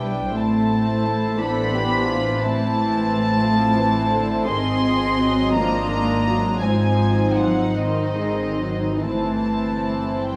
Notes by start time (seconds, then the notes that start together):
Already playing: B1 G3 D4 E4 G5
0.00 B4
0.34 A1 A3 C4 C5 A5
0.71 C4
1.05 E4
1.39 E3 B3 D4 A4 B5
1.74 G4
2.07 F4
2.41 E3 A3 C4 E4 A5
3.42 F3 E4 C5
3.76 E3
4.12 D3
4.46 G#1 D#3 C4 G#4 D#5 C6
4.83 F3
5.20 F#3
5.53 F3 A#3 D4 F4 A#5
5.90 D#3
6.28 F#3
6.61 F3 G#3 C4 D#4 C5 G#5
7.36 F#3 F#5
7.74 D#3 C4 C5 D#5
8.17 G#3
8.62 F#3
9.05 G1 E3 A3 C4 E4 C5 A5
10.28 G3 G5